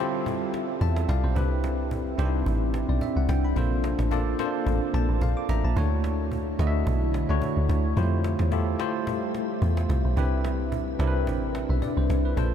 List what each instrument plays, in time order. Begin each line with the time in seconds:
Already playing: ambient pad G3 G4 A4 E5, tine electric piano A4, downlifter
0.00 tine electric piano C4 E4 F4 G4 C5
0.14 cajon slap
0.26 cajon bass
0.41 cajon slap
0.54 cajon slap
0.69 cajon slap
0.81 log drum bass E2, tine electric piano E5 A5, cajon bass
0.96 cajon slap
1.09 log drum bass C2, tine electric piano D5 F5, cajon bass, cajon slap
1.24 log drum bass B1, tine electric piano C5, cajon slap
1.35 log drum bass C2, ambient pad C3 C4 D4, tine electric piano C4 D4 E4 G4 B4, cajon bass
1.51 cajon slap
1.64 cajon slap
1.79 cajon slap
1.91 cajon bass
2.07 cajon slap
2.18 log drum bass C2, tine electric piano C4 D4 D#4 G4 C5, cajon slap
2.25 tine electric piano E4
2.34 cajon slap
2.46 log drum bass A1, cajon bass
2.61 cajon slap
2.74 cajon slap
2.89 log drum bass B1, tine electric piano D5, cajon slap
3.01 tine electric piano E5, cajon bass
3.16 log drum bass C2, tine electric piano F#5, cajon slap
3.29 log drum bass C2, tine electric piano G5, cajon bass, cajon slap
3.44 tine electric piano B5, cajon slap
3.56 log drum bass A#1, tine electric piano A#3 D4 F4 A4 C5, ambient pad A#3 A4, cajon bass
3.72 cajon slap
3.84 cajon slap
3.99 log drum bass A1, cajon slap
4.11 tine electric piano A#3 D4 F4 A4 D5, cajon bass
4.27 cajon slap
4.39 tine electric piano A#3 C4 F4 A4 C5, cajon slap
4.45 tine electric piano D4
4.54 cajon slap
4.67 log drum bass A1, cajon bass
4.81 cajon slap
4.94 log drum bass A#1, tine electric piano A5, cajon slap
5.09 log drum bass A1, cajon slap
5.21 log drum bass A#1, tine electric piano F5, cajon bass
5.37 tine electric piano D6, cajon slap
5.49 log drum bass A1, tine electric piano E5 A#5, cajon bass, cajon slap
5.64 log drum bass A#1, tine electric piano A5, cajon slap
5.76 log drum bass D2, ambient pad D3 E4 F#4 C#5, tine electric piano A3 D4 E4 F#4 C#5, cajon bass
5.92 cajon slap
6.04 cajon slap
6.19 cajon slap
6.32 cajon bass
6.47 cajon slap
6.59 log drum bass D2, tine electric piano A3 D4 E4 F#4 D#5, cajon slap
6.67 tine electric piano E5
6.75 cajon slap
6.87 log drum bass B1, cajon bass
7.01 cajon slap
7.14 cajon slap
7.29 log drum bass C#2, tine electric piano A3 D4 E4 F#4 C#5, cajon slap
7.42 cajon bass
7.57 log drum bass D2, cajon slap
7.69 log drum bass D2, cajon bass, cajon slap
7.85 cajon slap
7.96 log drum bass F2, tine electric piano G3 E4 F4 G4 C5, ambient pad G3 G4 A4 E5, cajon bass
8.03 tine electric piano A3
8.12 cajon slap
8.24 cajon slap
8.39 log drum bass E2, cajon slap
8.51 tine electric piano A3 E4 F4 G4 A4, cajon bass
8.67 cajon slap
8.79 tine electric piano A3 E4 F4 G4 C5, cajon slap
8.95 cajon slap
9.07 cajon bass
9.22 cajon slap
9.34 cajon slap
9.50 cajon slap
9.62 log drum bass E2, cajon bass
9.77 cajon slap
9.89 log drum bass C2, cajon bass, cajon slap
10.05 log drum bass B1, cajon slap
10.16 log drum bass C2, ambient pad C3 D4 B4, tine electric piano C4 D4 E4 G4 B4, cajon bass
10.32 cajon slap
10.45 cajon slap
10.60 cajon slap
10.72 cajon bass
10.88 cajon slap
10.99 log drum bass C2, tine electric piano C4 D4 E4 G4 A#4, cajon slap
11.07 tine electric piano B4
11.15 cajon slap
11.27 log drum bass A1, cajon bass
11.42 cajon slap
11.55 cajon slap
11.69 log drum bass B1, tine electric piano E5, cajon slap
11.82 tine electric piano D5, cajon bass
11.97 log drum bass C2, tine electric piano C5, cajon slap
12.10 log drum bass C2, cajon bass, cajon slap
12.25 tine electric piano B4, cajon slap
12.37 log drum bass A#1, tine electric piano A#3 D4 F4 A4 C5, cajon bass